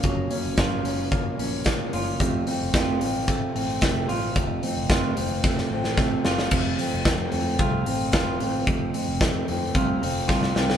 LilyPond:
<<
  \new Staff \with { instrumentName = "Clean electric guitar" } { \time 4/4 \key f \phrygian \tempo 4 = 111 <ges bes des' f'>8 des'8 f'8 des'8 bes8 des'8 bes8 f'8 | f,8 c'8 f'8 c'8 a8 c'8 a8 f'8 | f,8 c'8 f'8 c'8 a8 c'8 a8 f'8 | f,8 c'8 a8 c'8 f'8 c'8 f'8 c'8 |
f,8 c'8 a8 c'8 f'8 c'8 f'8 c'8 | }
  \new Staff \with { instrumentName = "Steel-string acoustic guitar" } { \time 4/4 \key f \phrygian <ges, des f bes des'>8 <f bes des'>8 <ges, des f bes des'>8 <f bes des'>8 <des f bes des'>8 <f bes des'>8 <ges, des f bes des'>8 <f bes des'>8 | <f, c f a c'>8 <f a c'>8 <f, c f a c'>8 <f a c'>8 <c f a c'>8 <f a c'>8 <f, c f a c'>8 <f a c'>8 | <f, c f a c'>8 <f a c'>8 <f, c f a c'>8 <f a c'>8 <c f a c'>8 <f a c'>8 <f, c f a c'>8 <f a c'>8 | <f, c f a c'>8 <f a c'>8 <c f a c'>8 <f a c'>8 <f, c f a c'>8 <f a c'>8 <c f a c'>8 <f a c'>8 |
<f, c f a c'>8 <f a c'>8 <c f a c'>8 <f a c'>8 <f, c f a c'>8 <f a c'>8 <c f a c'>8 <f a c'>8 | }
  \new Staff \with { instrumentName = "Fingered electric bass" } { \clef bass \time 4/4 \key f \phrygian ges,,8 r16 ges,,16 aes,,8 ges,,4 bes,,4 ges,,8 | f,,8 r16 f,,16 r8 a,,4 a,,8 f,,8 a,,8 | f,,8 r16 f,,16 ges,,8 f,,4 a,,4 ges,,8 | f,,8 r16 f,,16 f,8 f,8 c,8 a,,8 r8 a,,8 |
f,,8 r16 f,,16 f,8 f,8 c,8 f,,8 c,8 c,8 | }
  \new DrumStaff \with { instrumentName = "Drums" } \drummode { \time 4/4 <hh bd>8 hho8 <hh bd sn>8 hho8 <hh bd>8 hho8 <hh bd sn>8 hho8 | <hh bd>8 hho8 <hh bd sn>8 hho8 <hh bd>8 hho8 <hh bd sn>8 hho8 | <hh bd>8 hho8 <hh bd sn>8 hho8 <bd sn>16 sn8 sn16 <bd sn>8 sn16 sn16 | <cymc bd>8 hho8 <hh bd sn>8 hho8 <hh bd>8 hho8 <hh bd sn>8 hho8 |
<hh bd>8 hho8 <hh bd sn>8 hho8 <hh bd>8 hho8 <bd sn>16 sn16 sn16 sn16 | }
>>